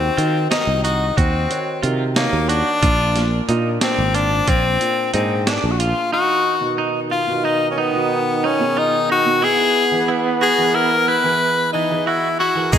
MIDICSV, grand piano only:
0, 0, Header, 1, 2, 480
1, 0, Start_track
1, 0, Tempo, 660793
1, 852, Time_signature, 5, 3, 24, 8
1, 9285, End_track
2, 0, Start_track
2, 0, Title_t, "Grand piano"
2, 0, Program_c, 0, 0
2, 0, Note_on_c, 0, 51, 58
2, 0, Note_on_c, 0, 63, 55
2, 0, Note_on_c, 0, 66, 55
2, 0, Note_on_c, 0, 70, 65
2, 92, Note_off_c, 0, 51, 0
2, 95, Note_off_c, 0, 63, 0
2, 97, Note_off_c, 0, 66, 0
2, 100, Note_off_c, 0, 70, 0
2, 125, Note_on_c, 0, 51, 69
2, 130, Note_on_c, 0, 63, 65
2, 133, Note_on_c, 0, 66, 65
2, 141, Note_on_c, 0, 72, 75
2, 329, Note_off_c, 0, 51, 0
2, 331, Note_off_c, 0, 63, 0
2, 333, Note_off_c, 0, 66, 0
2, 337, Note_off_c, 0, 72, 0
2, 367, Note_on_c, 0, 51, 61
2, 372, Note_on_c, 0, 63, 58
2, 373, Note_on_c, 0, 66, 55
2, 379, Note_on_c, 0, 70, 69
2, 971, Note_off_c, 0, 51, 0
2, 974, Note_off_c, 0, 63, 0
2, 975, Note_off_c, 0, 66, 0
2, 978, Note_off_c, 0, 70, 0
2, 1089, Note_on_c, 0, 51, 58
2, 1094, Note_on_c, 0, 63, 56
2, 1097, Note_on_c, 0, 66, 58
2, 1100, Note_on_c, 0, 73, 67
2, 1291, Note_off_c, 0, 51, 0
2, 1294, Note_off_c, 0, 63, 0
2, 1295, Note_off_c, 0, 66, 0
2, 1297, Note_off_c, 0, 73, 0
2, 1326, Note_on_c, 0, 51, 69
2, 1333, Note_on_c, 0, 63, 64
2, 1335, Note_on_c, 0, 66, 63
2, 1340, Note_on_c, 0, 70, 78
2, 1530, Note_off_c, 0, 51, 0
2, 1533, Note_off_c, 0, 63, 0
2, 1534, Note_off_c, 0, 66, 0
2, 1537, Note_off_c, 0, 70, 0
2, 1567, Note_on_c, 0, 51, 63
2, 1573, Note_on_c, 0, 58, 55
2, 1578, Note_on_c, 0, 66, 56
2, 1580, Note_on_c, 0, 73, 71
2, 2050, Note_off_c, 0, 51, 0
2, 2053, Note_off_c, 0, 58, 0
2, 2056, Note_off_c, 0, 66, 0
2, 2057, Note_off_c, 0, 73, 0
2, 2290, Note_on_c, 0, 46, 66
2, 2292, Note_on_c, 0, 58, 60
2, 2298, Note_on_c, 0, 62, 58
2, 2303, Note_on_c, 0, 65, 67
2, 2492, Note_off_c, 0, 46, 0
2, 2493, Note_off_c, 0, 58, 0
2, 2496, Note_off_c, 0, 62, 0
2, 2499, Note_off_c, 0, 65, 0
2, 2529, Note_on_c, 0, 46, 85
2, 2534, Note_on_c, 0, 58, 80
2, 2539, Note_on_c, 0, 62, 79
2, 2542, Note_on_c, 0, 65, 97
2, 2732, Note_off_c, 0, 46, 0
2, 2734, Note_off_c, 0, 58, 0
2, 2737, Note_off_c, 0, 62, 0
2, 2738, Note_off_c, 0, 65, 0
2, 2766, Note_on_c, 0, 46, 63
2, 2768, Note_on_c, 0, 58, 57
2, 2772, Note_on_c, 0, 62, 54
2, 2778, Note_on_c, 0, 65, 66
2, 3371, Note_off_c, 0, 46, 0
2, 3373, Note_off_c, 0, 58, 0
2, 3374, Note_off_c, 0, 62, 0
2, 3377, Note_off_c, 0, 65, 0
2, 3485, Note_on_c, 0, 46, 62
2, 3488, Note_on_c, 0, 58, 59
2, 3493, Note_on_c, 0, 62, 55
2, 3495, Note_on_c, 0, 65, 67
2, 3690, Note_off_c, 0, 46, 0
2, 3691, Note_off_c, 0, 58, 0
2, 3694, Note_off_c, 0, 62, 0
2, 3695, Note_off_c, 0, 65, 0
2, 3725, Note_on_c, 0, 46, 68
2, 3728, Note_on_c, 0, 58, 60
2, 3732, Note_on_c, 0, 62, 63
2, 3736, Note_on_c, 0, 68, 80
2, 3930, Note_off_c, 0, 46, 0
2, 3931, Note_off_c, 0, 58, 0
2, 3933, Note_off_c, 0, 62, 0
2, 3935, Note_off_c, 0, 68, 0
2, 3959, Note_on_c, 0, 46, 56
2, 3966, Note_on_c, 0, 58, 54
2, 3968, Note_on_c, 0, 62, 57
2, 3975, Note_on_c, 0, 68, 64
2, 4446, Note_off_c, 0, 46, 0
2, 4450, Note_off_c, 0, 58, 0
2, 4451, Note_off_c, 0, 62, 0
2, 4454, Note_off_c, 0, 68, 0
2, 4799, Note_on_c, 0, 47, 63
2, 4802, Note_on_c, 0, 59, 59
2, 4809, Note_on_c, 0, 63, 57
2, 4812, Note_on_c, 0, 66, 71
2, 5207, Note_off_c, 0, 47, 0
2, 5209, Note_off_c, 0, 59, 0
2, 5212, Note_off_c, 0, 63, 0
2, 5214, Note_off_c, 0, 66, 0
2, 5281, Note_on_c, 0, 47, 68
2, 5287, Note_on_c, 0, 59, 59
2, 5292, Note_on_c, 0, 63, 58
2, 5295, Note_on_c, 0, 66, 68
2, 5688, Note_off_c, 0, 47, 0
2, 5691, Note_off_c, 0, 59, 0
2, 5693, Note_off_c, 0, 63, 0
2, 5695, Note_off_c, 0, 66, 0
2, 5759, Note_on_c, 0, 47, 71
2, 5762, Note_on_c, 0, 59, 67
2, 5768, Note_on_c, 0, 63, 72
2, 5772, Note_on_c, 0, 66, 85
2, 6167, Note_off_c, 0, 47, 0
2, 6168, Note_off_c, 0, 59, 0
2, 6171, Note_off_c, 0, 63, 0
2, 6173, Note_off_c, 0, 66, 0
2, 6242, Note_on_c, 0, 47, 66
2, 6247, Note_on_c, 0, 59, 68
2, 6251, Note_on_c, 0, 63, 65
2, 6257, Note_on_c, 0, 68, 80
2, 6648, Note_off_c, 0, 47, 0
2, 6651, Note_off_c, 0, 59, 0
2, 6653, Note_off_c, 0, 63, 0
2, 6656, Note_off_c, 0, 68, 0
2, 6722, Note_on_c, 0, 47, 73
2, 6727, Note_on_c, 0, 59, 66
2, 6731, Note_on_c, 0, 63, 68
2, 6734, Note_on_c, 0, 66, 85
2, 6847, Note_off_c, 0, 47, 0
2, 6850, Note_off_c, 0, 59, 0
2, 6851, Note_off_c, 0, 63, 0
2, 6853, Note_off_c, 0, 66, 0
2, 7203, Note_on_c, 0, 52, 73
2, 7208, Note_on_c, 0, 64, 55
2, 7213, Note_on_c, 0, 68, 57
2, 7216, Note_on_c, 0, 71, 77
2, 7608, Note_off_c, 0, 52, 0
2, 7611, Note_off_c, 0, 64, 0
2, 7613, Note_off_c, 0, 68, 0
2, 7615, Note_off_c, 0, 71, 0
2, 7685, Note_on_c, 0, 52, 74
2, 7685, Note_on_c, 0, 64, 64
2, 7693, Note_on_c, 0, 68, 60
2, 7697, Note_on_c, 0, 70, 73
2, 8089, Note_off_c, 0, 52, 0
2, 8089, Note_off_c, 0, 64, 0
2, 8093, Note_off_c, 0, 68, 0
2, 8095, Note_off_c, 0, 70, 0
2, 8163, Note_on_c, 0, 52, 75
2, 8168, Note_on_c, 0, 64, 68
2, 8173, Note_on_c, 0, 68, 67
2, 8177, Note_on_c, 0, 71, 85
2, 8568, Note_off_c, 0, 52, 0
2, 8570, Note_off_c, 0, 64, 0
2, 8573, Note_off_c, 0, 68, 0
2, 8575, Note_off_c, 0, 71, 0
2, 8644, Note_on_c, 0, 52, 69
2, 8649, Note_on_c, 0, 64, 59
2, 8655, Note_on_c, 0, 68, 59
2, 8657, Note_on_c, 0, 71, 75
2, 9048, Note_off_c, 0, 52, 0
2, 9050, Note_off_c, 0, 64, 0
2, 9054, Note_off_c, 0, 68, 0
2, 9055, Note_off_c, 0, 71, 0
2, 9117, Note_on_c, 0, 52, 70
2, 9125, Note_on_c, 0, 64, 69
2, 9128, Note_on_c, 0, 68, 70
2, 9131, Note_on_c, 0, 70, 79
2, 9244, Note_off_c, 0, 52, 0
2, 9247, Note_off_c, 0, 64, 0
2, 9249, Note_off_c, 0, 68, 0
2, 9250, Note_off_c, 0, 70, 0
2, 9285, End_track
0, 0, End_of_file